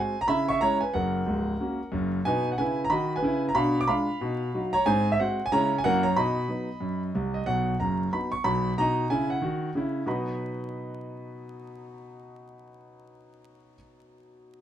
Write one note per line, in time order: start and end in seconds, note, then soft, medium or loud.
0.00 0.13 G#3 soft
0.00 0.13 C4 soft
0.00 0.14 F#4 soft
0.00 0.20 C5 medium
0.00 0.17 G#5 medium
0.21 0.28 A#5 loud
0.28 0.56 C#3 medium
0.28 0.47 E4 soft
0.28 0.47 E5 medium
0.28 0.45 B5 loud
0.48 0.61 E5 medium
0.48 0.59 C#6 loud
0.61 0.79 G#3 medium
0.61 0.79 C#4 soft
0.61 0.80 E4 medium
0.61 0.80 C#5 medium
0.61 0.78 A#5 loud
0.81 0.93 B4 medium
0.81 0.92 G#5 medium
0.94 1.20 F#1 medium
0.94 1.20 F#2 medium
0.94 2.08 A#4 medium
0.94 1.94 F#5 medium
1.26 1.52 C#1 medium
1.26 1.52 C#2 medium
1.60 1.78 A#3 soft
1.60 1.78 C#4 soft
1.60 1.78 F#4 soft
1.92 2.18 F#1 medium
1.92 2.18 F#2 medium
2.25 2.51 B2 medium
2.25 2.52 D#4 medium
2.25 2.50 B4 medium
2.25 2.47 G#5 loud
2.52 2.58 F#5 medium
2.58 2.84 C#3 medium
2.58 2.85 E4 medium
2.58 2.83 B4 medium
2.58 2.80 G#5 medium
2.84 2.90 A#5 medium
2.90 3.16 D#3 medium
2.90 3.17 F#4 medium
2.90 3.15 D#5 medium
2.90 3.12 B5 medium
3.16 3.47 B4 medium
3.16 3.44 G#5 medium
3.22 3.48 C#3 medium
3.22 3.50 E4 medium
3.49 3.55 A#5 medium
3.55 3.83 B2 medium
3.55 3.74 D4 soft
3.55 3.80 F5 medium
3.55 3.77 B5 medium
3.81 3.88 D6 medium
3.87 4.06 G#3 soft
3.87 4.06 D4 soft
3.87 4.06 F4 soft
3.87 4.69 F5 medium
3.87 4.60 B5 medium
4.21 4.49 B2 medium
4.21 4.40 D#4 soft
4.54 4.72 F#3 medium
4.54 4.72 D#4 soft
4.54 4.72 F#4 medium
4.73 4.85 C#5 medium
4.73 4.84 A#5 loud
4.86 5.14 G#2 medium
4.86 5.05 C4 medium
4.86 5.11 C5 medium
4.86 5.08 G#5 loud
5.12 5.18 E5 medium
5.20 5.37 G#3 soft
5.20 5.38 C4 medium
5.20 5.38 F#4 medium
5.20 5.44 C5 medium
5.20 5.41 F#5 medium
5.46 5.52 G#5 medium
5.52 5.80 C#3 medium
5.52 5.70 G#3 medium
5.52 5.71 C#4 medium
5.52 5.71 E4 medium
5.52 5.76 C#5 medium
5.52 5.74 A#5 loud
5.78 5.84 G#5 medium
5.84 6.12 F#2 medium
5.84 6.02 F#3 medium
5.84 6.04 A#3 medium
5.84 6.03 E4 soft
5.84 6.03 A#4 medium
5.84 6.01 F#5 loud
6.03 6.16 C#5 medium
6.03 6.14 A#5 medium
6.16 6.44 B2 medium
6.16 6.36 D#4 soft
6.16 7.11 D#5 medium
6.16 7.00 B5 loud
6.48 6.66 F#3 soft
6.48 6.67 B3 soft
6.48 6.67 D#4 soft
6.80 7.09 F#2 medium
7.15 7.41 C2 medium
7.15 7.41 C3 medium
7.34 7.45 D#5 medium
7.46 7.73 B1 medium
7.46 7.73 B2 medium
7.46 7.74 F#5 medium
7.80 8.06 F#1 medium
7.80 8.06 F#2 medium
7.80 8.07 A#5 medium
8.13 8.31 F#3 soft
8.13 8.31 B3 soft
8.13 8.31 D#4 soft
8.13 8.29 B5 medium
8.32 8.43 C#6 medium
8.44 8.71 B1 medium
8.44 8.71 B2 medium
8.44 8.72 B5 loud
8.78 9.04 B2 medium
8.78 9.05 D#4 medium
8.78 9.06 A#5 loud
9.10 9.37 C#3 medium
9.10 9.37 E4 medium
9.10 9.27 G#5 medium
9.30 9.69 F#5 medium
9.42 9.68 D#3 medium
9.42 9.69 F#4 medium
9.75 10.01 C#3 medium
9.75 10.03 E4 medium
10.06 13.75 B2 medium
10.06 13.75 F#3 soft
10.06 13.75 D#4 soft
10.06 13.75 F#4 soft
10.06 13.76 B4 soft
10.06 13.76 D#5 soft
10.06 13.76 B5 medium